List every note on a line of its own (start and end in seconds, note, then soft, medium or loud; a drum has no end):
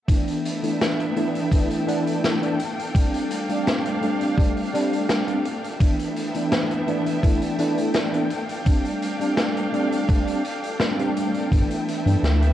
0.08 0.59 E3 medium
0.08 0.59 A3 medium
0.08 2.56 B3 medium
0.08 0.59 B3 medium
0.08 0.59 D4 medium
0.08 5.76 A4 medium
0.08 2.57 E5 medium
0.08 5.76 G5 medium
0.08 kick loud
0.08 closed hi-hat loud
0.28 closed hi-hat medium
0.46 closed hi-hat medium
0.63 1.12 E3 medium
0.63 1.12 A3 medium
0.63 1.12 B3 medium
0.63 1.12 D4 medium
0.63 closed hi-hat medium
0.81 snare loud
0.81 closed hi-hat medium
1.00 closed hi-hat medium
1.16 1.48 E3 medium
1.16 1.48 A3 medium
1.16 1.48 B3 medium
1.16 1.48 D4 medium
1.16 closed hi-hat medium
1.35 closed hi-hat soft
1.51 1.83 E3 medium
1.51 1.83 A3 medium
1.51 1.84 B3 medium
1.51 1.84 D4 medium
1.51 kick loud
1.51 closed hi-hat loud
1.71 closed hi-hat medium
1.86 2.37 E3 loud
1.86 2.37 A3 medium
1.86 2.37 B3 medium
1.86 2.38 D4 loud
1.86 closed hi-hat medium
2.07 closed hi-hat medium
2.24 snare loud
2.24 closed hi-hat medium
2.41 2.56 E3 medium
2.41 2.57 A3 medium
2.41 2.57 B3 medium
2.41 2.57 D4 medium
2.41 closed hi-hat medium
2.59 5.77 D4 medium
2.59 5.77 F5 medium
2.59 closed hi-hat medium
2.79 closed hi-hat medium
2.94 3.44 G3 medium
2.94 3.45 A3 medium
2.94 3.45 C4 medium
2.94 3.45 D4 medium
2.94 kick loud
2.94 closed hi-hat medium
3.14 closed hi-hat medium
3.31 closed hi-hat medium
3.48 3.97 G3 medium
3.48 3.98 A3 medium
3.48 3.98 C4 medium
3.48 3.98 D4 medium
3.48 closed hi-hat soft
3.67 snare loud
3.67 closed hi-hat medium
3.85 closed hi-hat medium
4.01 4.33 G3 medium
4.01 4.33 A3 medium
4.01 4.34 C4 medium
4.01 4.34 D4 medium
4.01 closed hi-hat medium
4.21 closed hi-hat medium
4.37 4.69 G3 medium
4.37 4.69 A3 medium
4.37 4.69 C4 medium
4.37 4.70 D4 medium
4.37 kick loud
4.37 closed hi-hat medium
4.57 closed hi-hat medium
4.73 5.23 G3 loud
4.73 5.23 A3 medium
4.73 5.24 C4 medium
4.73 5.24 D4 loud
4.73 closed hi-hat medium
4.93 closed hi-hat soft
5.09 snare loud
5.09 closed hi-hat loud
5.27 5.44 G3 medium
5.27 5.44 A3 medium
5.27 5.44 C4 medium
5.27 5.44 D4 medium
5.27 closed hi-hat medium
5.45 closed hi-hat medium
5.64 closed hi-hat medium
5.80 6.30 E3 medium
5.80 6.30 A3 medium
5.80 8.28 B3 medium
5.80 6.31 B3 medium
5.80 6.31 D4 medium
5.80 12.53 A4 medium
5.80 8.28 E5 medium
5.80 12.53 G5 medium
5.80 kick loud
5.80 closed hi-hat medium
5.99 closed hi-hat soft
6.16 closed hi-hat medium
6.34 6.83 E3 medium
6.34 6.83 A3 medium
6.34 6.84 B3 medium
6.34 6.84 D4 medium
6.34 closed hi-hat medium
6.52 snare loud
6.52 closed hi-hat loud
6.71 closed hi-hat medium
6.87 7.19 E3 medium
6.87 7.19 A3 medium
6.87 7.19 B3 medium
6.87 7.20 D4 medium
6.87 closed hi-hat soft
7.06 closed hi-hat medium
7.23 7.55 E3 medium
7.23 7.55 A3 medium
7.23 7.55 B3 medium
7.23 7.55 D4 medium
7.23 kick loud
7.23 closed hi-hat medium
7.42 closed hi-hat medium
7.58 8.08 E3 loud
7.58 8.09 A3 medium
7.58 8.09 B3 medium
7.58 8.09 D4 loud
7.58 closed hi-hat medium
7.78 closed hi-hat medium
7.94 snare loud
7.94 closed hi-hat medium
8.12 8.28 E3 medium
8.12 8.28 A3 medium
8.12 8.28 B3 medium
8.12 8.29 D4 medium
8.12 closed hi-hat medium
8.30 11.49 D4 medium
8.30 11.49 F5 medium
8.30 closed hi-hat medium
8.49 closed hi-hat soft
8.64 9.15 G3 medium
8.64 9.16 A3 medium
8.64 9.16 C4 medium
8.64 9.16 D4 medium
8.64 kick loud
8.64 closed hi-hat medium
8.85 closed hi-hat soft
9.02 closed hi-hat medium
9.19 9.69 G3 medium
9.19 9.69 A3 medium
9.19 9.69 C4 medium
9.19 9.70 D4 medium
9.19 closed hi-hat soft
9.37 snare loud
9.37 closed hi-hat loud
9.57 closed hi-hat soft
9.72 10.04 G3 medium
9.72 10.05 A3 medium
9.72 10.05 C4 medium
9.72 10.05 D4 medium
9.72 closed hi-hat soft
9.92 closed hi-hat medium
10.08 10.40 G3 medium
10.08 10.41 A3 medium
10.08 10.41 C4 medium
10.08 10.41 D4 loud
10.08 kick loud
10.08 closed hi-hat medium
10.28 closed hi-hat medium
10.45 closed hi-hat medium
10.64 closed hi-hat medium
10.80 10.94 G3 medium
10.80 10.95 A3 medium
10.80 10.95 C4 medium
10.80 10.95 D4 medium
10.80 snare loud
10.80 closed hi-hat medium
10.98 11.47 G3 medium
10.98 11.48 A3 medium
10.98 11.48 C4 medium
10.98 11.48 D4 medium
10.98 closed hi-hat medium
11.17 closed hi-hat medium
11.34 closed hi-hat soft
11.51 11.63 G1 loud
11.51 12.01 E3 medium
11.51 12.02 A3 medium
11.51 12.53 B3 medium
11.51 12.02 B3 medium
11.51 12.02 D4 medium
11.51 12.53 E5 medium
11.51 kick loud
11.51 closed hi-hat medium
11.71 closed hi-hat medium
11.88 closed hi-hat medium
12.05 12.16 G2 medium
12.05 12.53 E3 medium
12.05 12.53 A3 medium
12.05 12.53 B3 medium
12.05 12.53 D4 medium
12.05 closed hi-hat soft
12.23 12.53 D2 medium
12.23 snare loud
12.23 closed hi-hat medium
12.42 closed hi-hat medium